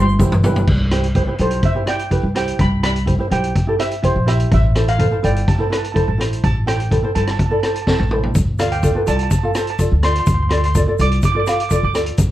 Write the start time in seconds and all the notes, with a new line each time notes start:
Already playing: G1
0.02 C6
0.09 shaker
0.19 E4 G4 C5, kick, mid tom, shaker
0.32 G1, mid tom, shaker
0.43 E4 G4 B4, floor tom, shaker
0.56 floor tom, shaker
0.67 C2, kick, crash
0.91 E4 G4 C5, cross-stick, closed hi-hat
1.04 closed hi-hat
1.15 E4 G4 C5, kick, closed hi-hat
1.27 E4 G4 C5
1.38 B1 E4 G4 A4 C5, closed hi-hat
1.51 closed hi-hat
1.63 E5, kick, closed hi-hat
1.75 E4 G4 C5
1.86 E4 G4 D5 G5, cross-stick, closed hi-hat
1.99 closed hi-hat
2.10 E4 G4 B4, kick, closed hi-hat
2.23 C2
2.35 E4 G4 C5 G5, cross-stick, closed hi-hat
2.48 closed hi-hat
2.59 C2 B5, kick, closed hi-hat
2.83 E4 G4 D5 B5, cross-stick, closed hi-hat
2.96 closed hi-hat
3.06 E4 G4 C5, kick, closed hi-hat
3.19 E4 G4 C5
3.30 B1 E4 G4 C5 G5, closed hi-hat
3.44 closed hi-hat
3.55 kick, closed hi-hat
3.67 E4 G4 A4
3.79 E4 G4 C5 E5, cross-stick, closed hi-hat
3.91 closed hi-hat
4.02 E4 G4 C5, kick, closed hi-hat
4.16 A#1
4.26 E4 G4 C5 E5, cross-stick, closed hi-hat
4.40 closed hi-hat
4.52 A1 E5, kick, closed hi-hat
4.75 E4 A4 C5, cross-stick, closed hi-hat
4.88 F5, closed hi-hat
4.98 E4 A4 C5, kick, closed hi-hat
5.11 E4 A4 C5
5.22 G1 E4 A4 D5 G5, closed hi-hat
5.36 closed hi-hat
5.48 A5, kick, closed hi-hat
5.56 E4 A4 A5
5.60 C5 A5
5.70 E4 A4 B4 A5, cross-stick, closed hi-hat
5.77 A5
5.84 A5, closed hi-hat
5.92 E4 A4 C5 A5, kick
5.96 A5, closed hi-hat
6.08 A1 A5
6.18 E4 A4 C5, cross-stick, closed hi-hat
6.33 closed hi-hat
6.44 A1 A5, kick, closed hi-hat
6.66 E4 A4 C5 G5, cross-stick, closed hi-hat
6.80 closed hi-hat
6.91 E4 A4 C5, kick, closed hi-hat
7.03 E4 A4 C5
7.15 G1 E4 A4 C5 A5, closed hi-hat
7.23 A5, cross-stick, closed hi-hat
7.31 A5
7.39 A5, kick, closed hi-hat
7.46 A5
7.50 E4 A4 D5 A5
7.60 E4 A4 A5, cross-stick, closed hi-hat
7.64 C5 A5
7.75 A5, closed hi-hat
7.82 A5
7.86 E4 A4 C5 A5, kick, snare
7.97 A1 A5, high tom
8.11 E4 A4 C5, mid tom
8.23 floor tom
8.35 D2, kick, closed hi-hat, shaker
8.59 F4 A4 D5 F5, cross-stick, closed hi-hat, shaker
8.72 G5, closed hi-hat
8.83 F4 A4 D5, kick, closed hi-hat, shaker
8.95 F4 A4 B4
9.06 C2 F4 A4 D5 A5, closed hi-hat, shaker
9.16 A5, closed hi-hat
9.23 A5
9.30 A5, kick, closed hi-hat, shaker
9.39 A5
9.43 F4 A4 F5
9.48 A5
9.55 F4 A4 C5 A5, cross-stick, closed hi-hat, shaker
9.62 A5
9.67 A5, closed hi-hat
9.79 F4 A4 D5, kick, closed hi-hat, shaker
9.92 D2
10.03 F4 A4 D5 C6, cross-stick, closed hi-hat
10.13 C6, closed hi-hat
10.20 C6
10.26 D2 C6, kick, closed hi-hat, shaker
10.34 C6
10.43 C6
10.49 F4 A4 D5 C6, cross-stick, closed hi-hat
10.58 C6
10.64 C6, closed hi-hat
10.75 F4 A4 D5, kick, closed hi-hat, shaker
10.87 F4 A4 D5
10.99 C2 F4 A4 D5 D6, closed hi-hat, shaker
11.11 closed hi-hat
11.22 D6, kick, closed hi-hat, shaker
11.32 F4 A4 D6
11.37 D5 D6
11.47 F4 A4 F5 D6, cross-stick, closed hi-hat, shaker
11.52 D6
11.60 D6, closed hi-hat
11.69 F4 A4 D5 D6, kick, closed hi-hat, shaker
11.76 D6
11.83 D2 D6
11.94 F4 A4 D5, cross-stick, closed hi-hat, shaker
12.06 closed hi-hat
12.17 E2, kick, closed hi-hat, shaker